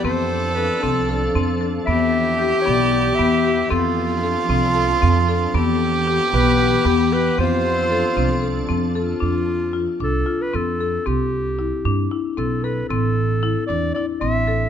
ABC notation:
X:1
M:7/8
L:1/16
Q:1/4=114
K:Flyd
V:1 name="Clarinet"
c4 B2 A6 z2 | e6 d4 e4 | A4 z8 z2 | z6 B4 G2 B2 |
c8- c2 z2 F2- | F6 A3 B A4 | G8 z2 A2 B2 | A6 d2 d2 e4 |]
V:2 name="Viola"
A12 z2 | G12- G2 | F12- F2 | G12- G2 |
F12 z2 | z12 z2 | z12 z2 | z12 z2 |]
V:3 name="Marimba"
C4 A2 C2 A2 C2 A2 | B,4 G2 B,2 G2 B,2 G2 | C4 A2 C2 A2 C2 A2 | B,4 G2 B,2 G2 B,2 G2 |
C4 A2 C2 A2 C2 A2 | D4 F2 D2 F2 C2 A2 | C4 E2 D2 E2 C2 A2 | C4 E2 D2 E2 C2 A2 |]
V:4 name="Ambient pad"
[F,DA]12- [F,DA]2 | [E,B,G]12- [E,B,G]2 | [F,DA]12- [F,DA]2 | [E,B,G]12- [E,B,G]2 |
[F,DA]12- [F,DA]2 | z12 z2 | z12 z2 | z12 z2 |]
V:5 name="Upright bass" clef=bass
F,,6 C,,4 F,,4 | E,,6 B,,,4 E,,4 | F,,6 C,,4 F,,4 | E,,6 B,,,4 E,,4 |
F,,6 C,,4 F,,4 | F,,6 C,,2 z2 F,,4 | C,,6 G,,2 z2 B,,,4 | A,,,6 E,,2 z2 A,,,4 |]